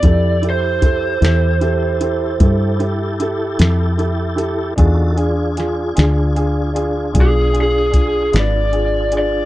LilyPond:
<<
  \new Staff \with { instrumentName = "Lead electric guitar" } { \time 12/8 \key f \lydian \tempo 4. = 51 d''8 c''2. r2 r8 | r2. gis'8 gis'4 d''4 d''8 | }
  \new Staff \with { instrumentName = "Tonewheel organ" } { \time 12/8 \key f \lydian <e' g' a'>1. | <dis' fis' a'>8 <d' f' gis'>1~ <d' f' gis'>4. | }
  \new Staff \with { instrumentName = "Upright piano" } { \time 12/8 \key f \lydian <e' g' a'>8 <e' g' a'>8 <e' g' a'>8 <e' g' a'>8 <e' g' a'>8 <e' g' a'>8 <e' g' a'>8 <e' g' a'>8 <e' g' a'>8 <e' g' a'>8 <e' g' a'>8 <e' g' a'>8 | <d' f' gis'>8 <d' f' gis'>8 <d' f' gis'>8 <d' f' gis'>8 <d' f' gis'>8 <d' f' gis'>8 <d' f' gis'>8 <d' f' gis'>8 <d' f' gis'>8 <d' f' b'>8 <d' f' gis'>8 <d' f' gis'>8 | }
  \new Staff \with { instrumentName = "Fingered electric bass" } { \clef bass \time 12/8 \key f \lydian f,4. e,4. g,4. f,4. | e,4. d,4. b,,4. gis,,4. | }
  \new DrumStaff \with { instrumentName = "Drums" } \drummode { \time 12/8 <hh bd>8 hh8 <hh bd>8 <hh sn>8 hh8 hh8 <hh bd>8 hh8 hh8 <hh sn>8 hh8 hh8 | <hh bd>8 hh8 <hh sn>8 <hh sn>8 hh8 hh8 <hh bd>8 hh8 <hh bd>8 <hh sn>8 hh8 hh8 | }
>>